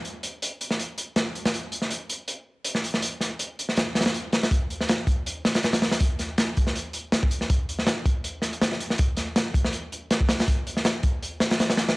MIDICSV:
0, 0, Header, 1, 2, 480
1, 0, Start_track
1, 0, Tempo, 372671
1, 57, Time_signature, 4, 2, 24, 8
1, 15415, End_track
2, 0, Start_track
2, 0, Title_t, "Drums"
2, 61, Note_on_c, 9, 42, 64
2, 190, Note_off_c, 9, 42, 0
2, 298, Note_on_c, 9, 42, 81
2, 427, Note_off_c, 9, 42, 0
2, 545, Note_on_c, 9, 42, 89
2, 674, Note_off_c, 9, 42, 0
2, 784, Note_on_c, 9, 42, 59
2, 909, Note_on_c, 9, 38, 49
2, 913, Note_off_c, 9, 42, 0
2, 1024, Note_on_c, 9, 42, 78
2, 1038, Note_off_c, 9, 38, 0
2, 1153, Note_off_c, 9, 42, 0
2, 1259, Note_on_c, 9, 42, 65
2, 1388, Note_off_c, 9, 42, 0
2, 1494, Note_on_c, 9, 42, 77
2, 1496, Note_on_c, 9, 38, 98
2, 1623, Note_off_c, 9, 42, 0
2, 1625, Note_off_c, 9, 38, 0
2, 1743, Note_on_c, 9, 42, 55
2, 1872, Note_off_c, 9, 42, 0
2, 1873, Note_on_c, 9, 42, 73
2, 1874, Note_on_c, 9, 38, 89
2, 1981, Note_off_c, 9, 42, 0
2, 1981, Note_on_c, 9, 42, 86
2, 2003, Note_off_c, 9, 38, 0
2, 2110, Note_off_c, 9, 42, 0
2, 2214, Note_on_c, 9, 42, 62
2, 2340, Note_on_c, 9, 38, 39
2, 2343, Note_off_c, 9, 42, 0
2, 2455, Note_on_c, 9, 42, 91
2, 2468, Note_off_c, 9, 38, 0
2, 2583, Note_off_c, 9, 42, 0
2, 2698, Note_on_c, 9, 42, 70
2, 2827, Note_off_c, 9, 42, 0
2, 2933, Note_on_c, 9, 42, 79
2, 3062, Note_off_c, 9, 42, 0
2, 3408, Note_on_c, 9, 42, 86
2, 3536, Note_off_c, 9, 42, 0
2, 3539, Note_on_c, 9, 38, 48
2, 3658, Note_on_c, 9, 42, 70
2, 3668, Note_off_c, 9, 38, 0
2, 3785, Note_on_c, 9, 38, 49
2, 3787, Note_off_c, 9, 42, 0
2, 3893, Note_on_c, 9, 42, 91
2, 3914, Note_off_c, 9, 38, 0
2, 4022, Note_off_c, 9, 42, 0
2, 4129, Note_on_c, 9, 38, 37
2, 4139, Note_on_c, 9, 42, 71
2, 4258, Note_off_c, 9, 38, 0
2, 4268, Note_off_c, 9, 42, 0
2, 4370, Note_on_c, 9, 42, 84
2, 4499, Note_off_c, 9, 42, 0
2, 4623, Note_on_c, 9, 42, 54
2, 4749, Note_on_c, 9, 38, 38
2, 4752, Note_off_c, 9, 42, 0
2, 4850, Note_on_c, 9, 42, 80
2, 4863, Note_off_c, 9, 38, 0
2, 4863, Note_on_c, 9, 38, 96
2, 4979, Note_off_c, 9, 42, 0
2, 4992, Note_off_c, 9, 38, 0
2, 5091, Note_on_c, 9, 38, 76
2, 5093, Note_on_c, 9, 42, 66
2, 5159, Note_off_c, 9, 42, 0
2, 5159, Note_on_c, 9, 42, 66
2, 5162, Note_off_c, 9, 38, 0
2, 5162, Note_on_c, 9, 38, 77
2, 5229, Note_off_c, 9, 38, 0
2, 5229, Note_off_c, 9, 42, 0
2, 5229, Note_on_c, 9, 38, 103
2, 5229, Note_on_c, 9, 42, 71
2, 5335, Note_off_c, 9, 42, 0
2, 5335, Note_on_c, 9, 42, 82
2, 5357, Note_off_c, 9, 38, 0
2, 5463, Note_off_c, 9, 42, 0
2, 5572, Note_on_c, 9, 42, 70
2, 5577, Note_on_c, 9, 38, 93
2, 5701, Note_off_c, 9, 42, 0
2, 5706, Note_off_c, 9, 38, 0
2, 5708, Note_on_c, 9, 42, 74
2, 5710, Note_on_c, 9, 38, 87
2, 5812, Note_on_c, 9, 36, 120
2, 5818, Note_off_c, 9, 42, 0
2, 5818, Note_on_c, 9, 42, 92
2, 5839, Note_off_c, 9, 38, 0
2, 5940, Note_off_c, 9, 36, 0
2, 5947, Note_off_c, 9, 42, 0
2, 6058, Note_on_c, 9, 42, 61
2, 6187, Note_off_c, 9, 42, 0
2, 6189, Note_on_c, 9, 38, 44
2, 6293, Note_on_c, 9, 42, 87
2, 6304, Note_off_c, 9, 38, 0
2, 6304, Note_on_c, 9, 38, 127
2, 6421, Note_off_c, 9, 42, 0
2, 6433, Note_off_c, 9, 38, 0
2, 6530, Note_on_c, 9, 36, 98
2, 6534, Note_on_c, 9, 42, 66
2, 6659, Note_off_c, 9, 36, 0
2, 6663, Note_off_c, 9, 42, 0
2, 6779, Note_on_c, 9, 42, 91
2, 6908, Note_off_c, 9, 42, 0
2, 7018, Note_on_c, 9, 38, 94
2, 7020, Note_on_c, 9, 42, 75
2, 7142, Note_off_c, 9, 42, 0
2, 7142, Note_on_c, 9, 42, 83
2, 7147, Note_off_c, 9, 38, 0
2, 7151, Note_on_c, 9, 38, 98
2, 7248, Note_off_c, 9, 42, 0
2, 7248, Note_on_c, 9, 42, 74
2, 7268, Note_off_c, 9, 38, 0
2, 7268, Note_on_c, 9, 38, 108
2, 7377, Note_off_c, 9, 42, 0
2, 7382, Note_off_c, 9, 38, 0
2, 7382, Note_on_c, 9, 38, 113
2, 7384, Note_on_c, 9, 42, 86
2, 7497, Note_off_c, 9, 38, 0
2, 7497, Note_on_c, 9, 38, 114
2, 7499, Note_off_c, 9, 42, 0
2, 7499, Note_on_c, 9, 42, 72
2, 7619, Note_off_c, 9, 38, 0
2, 7619, Note_on_c, 9, 38, 108
2, 7628, Note_off_c, 9, 42, 0
2, 7631, Note_on_c, 9, 42, 80
2, 7729, Note_off_c, 9, 42, 0
2, 7729, Note_on_c, 9, 42, 97
2, 7736, Note_on_c, 9, 36, 122
2, 7748, Note_off_c, 9, 38, 0
2, 7857, Note_off_c, 9, 42, 0
2, 7865, Note_off_c, 9, 36, 0
2, 7972, Note_on_c, 9, 42, 64
2, 7978, Note_on_c, 9, 38, 34
2, 8101, Note_off_c, 9, 42, 0
2, 8107, Note_off_c, 9, 38, 0
2, 8215, Note_on_c, 9, 42, 98
2, 8219, Note_on_c, 9, 38, 127
2, 8344, Note_off_c, 9, 42, 0
2, 8348, Note_off_c, 9, 38, 0
2, 8460, Note_on_c, 9, 42, 66
2, 8467, Note_on_c, 9, 36, 94
2, 8587, Note_on_c, 9, 38, 53
2, 8589, Note_off_c, 9, 42, 0
2, 8596, Note_off_c, 9, 36, 0
2, 8701, Note_on_c, 9, 42, 83
2, 8716, Note_off_c, 9, 38, 0
2, 8830, Note_off_c, 9, 42, 0
2, 8930, Note_on_c, 9, 42, 67
2, 9059, Note_off_c, 9, 42, 0
2, 9173, Note_on_c, 9, 38, 113
2, 9180, Note_on_c, 9, 42, 93
2, 9302, Note_off_c, 9, 38, 0
2, 9309, Note_off_c, 9, 42, 0
2, 9311, Note_on_c, 9, 36, 96
2, 9414, Note_on_c, 9, 42, 68
2, 9440, Note_off_c, 9, 36, 0
2, 9543, Note_off_c, 9, 42, 0
2, 9543, Note_on_c, 9, 38, 48
2, 9656, Note_on_c, 9, 42, 90
2, 9659, Note_on_c, 9, 36, 109
2, 9671, Note_off_c, 9, 38, 0
2, 9785, Note_off_c, 9, 42, 0
2, 9787, Note_off_c, 9, 36, 0
2, 9904, Note_on_c, 9, 42, 64
2, 10029, Note_on_c, 9, 38, 44
2, 10033, Note_off_c, 9, 42, 0
2, 10132, Note_off_c, 9, 38, 0
2, 10132, Note_on_c, 9, 38, 112
2, 10138, Note_on_c, 9, 42, 96
2, 10261, Note_off_c, 9, 38, 0
2, 10267, Note_off_c, 9, 42, 0
2, 10376, Note_on_c, 9, 36, 92
2, 10379, Note_on_c, 9, 42, 73
2, 10505, Note_off_c, 9, 36, 0
2, 10507, Note_off_c, 9, 42, 0
2, 10615, Note_on_c, 9, 42, 90
2, 10744, Note_off_c, 9, 42, 0
2, 10841, Note_on_c, 9, 38, 40
2, 10858, Note_on_c, 9, 42, 67
2, 10970, Note_off_c, 9, 38, 0
2, 10983, Note_off_c, 9, 42, 0
2, 10983, Note_on_c, 9, 42, 42
2, 11096, Note_on_c, 9, 38, 109
2, 11103, Note_off_c, 9, 42, 0
2, 11103, Note_on_c, 9, 42, 87
2, 11225, Note_off_c, 9, 38, 0
2, 11230, Note_on_c, 9, 38, 48
2, 11232, Note_off_c, 9, 42, 0
2, 11339, Note_on_c, 9, 42, 64
2, 11359, Note_off_c, 9, 38, 0
2, 11467, Note_off_c, 9, 42, 0
2, 11467, Note_on_c, 9, 38, 53
2, 11567, Note_on_c, 9, 42, 93
2, 11582, Note_on_c, 9, 36, 112
2, 11596, Note_off_c, 9, 38, 0
2, 11696, Note_off_c, 9, 42, 0
2, 11711, Note_off_c, 9, 36, 0
2, 11806, Note_on_c, 9, 42, 72
2, 11813, Note_on_c, 9, 38, 38
2, 11935, Note_off_c, 9, 42, 0
2, 11942, Note_off_c, 9, 38, 0
2, 12055, Note_on_c, 9, 38, 127
2, 12055, Note_on_c, 9, 42, 91
2, 12183, Note_off_c, 9, 38, 0
2, 12184, Note_off_c, 9, 42, 0
2, 12292, Note_on_c, 9, 36, 90
2, 12300, Note_on_c, 9, 42, 70
2, 12420, Note_off_c, 9, 36, 0
2, 12423, Note_on_c, 9, 38, 59
2, 12429, Note_off_c, 9, 42, 0
2, 12529, Note_on_c, 9, 42, 86
2, 12552, Note_off_c, 9, 38, 0
2, 12658, Note_off_c, 9, 42, 0
2, 12781, Note_on_c, 9, 42, 61
2, 12910, Note_off_c, 9, 42, 0
2, 13016, Note_on_c, 9, 42, 80
2, 13019, Note_on_c, 9, 38, 97
2, 13145, Note_off_c, 9, 42, 0
2, 13145, Note_on_c, 9, 36, 98
2, 13148, Note_off_c, 9, 38, 0
2, 13249, Note_on_c, 9, 38, 108
2, 13256, Note_on_c, 9, 42, 82
2, 13274, Note_off_c, 9, 36, 0
2, 13378, Note_off_c, 9, 38, 0
2, 13385, Note_off_c, 9, 42, 0
2, 13390, Note_on_c, 9, 42, 75
2, 13397, Note_on_c, 9, 38, 92
2, 13495, Note_off_c, 9, 42, 0
2, 13495, Note_on_c, 9, 42, 93
2, 13496, Note_on_c, 9, 36, 106
2, 13526, Note_off_c, 9, 38, 0
2, 13624, Note_off_c, 9, 42, 0
2, 13625, Note_off_c, 9, 36, 0
2, 13740, Note_on_c, 9, 42, 70
2, 13867, Note_on_c, 9, 38, 47
2, 13869, Note_off_c, 9, 42, 0
2, 13974, Note_off_c, 9, 38, 0
2, 13974, Note_on_c, 9, 38, 125
2, 13974, Note_on_c, 9, 42, 83
2, 14103, Note_off_c, 9, 38, 0
2, 14103, Note_off_c, 9, 42, 0
2, 14207, Note_on_c, 9, 42, 63
2, 14212, Note_on_c, 9, 36, 93
2, 14335, Note_off_c, 9, 42, 0
2, 14341, Note_off_c, 9, 36, 0
2, 14459, Note_on_c, 9, 42, 86
2, 14587, Note_off_c, 9, 42, 0
2, 14688, Note_on_c, 9, 38, 95
2, 14700, Note_on_c, 9, 42, 74
2, 14817, Note_off_c, 9, 38, 0
2, 14819, Note_off_c, 9, 42, 0
2, 14819, Note_on_c, 9, 42, 79
2, 14830, Note_on_c, 9, 38, 101
2, 14938, Note_off_c, 9, 42, 0
2, 14938, Note_on_c, 9, 42, 81
2, 14943, Note_off_c, 9, 38, 0
2, 14943, Note_on_c, 9, 38, 116
2, 15066, Note_off_c, 9, 38, 0
2, 15066, Note_off_c, 9, 42, 0
2, 15066, Note_on_c, 9, 38, 112
2, 15071, Note_on_c, 9, 42, 77
2, 15165, Note_off_c, 9, 38, 0
2, 15165, Note_on_c, 9, 38, 116
2, 15169, Note_off_c, 9, 42, 0
2, 15169, Note_on_c, 9, 42, 83
2, 15294, Note_off_c, 9, 38, 0
2, 15298, Note_off_c, 9, 42, 0
2, 15308, Note_on_c, 9, 42, 70
2, 15310, Note_on_c, 9, 38, 103
2, 15415, Note_off_c, 9, 38, 0
2, 15415, Note_off_c, 9, 42, 0
2, 15415, End_track
0, 0, End_of_file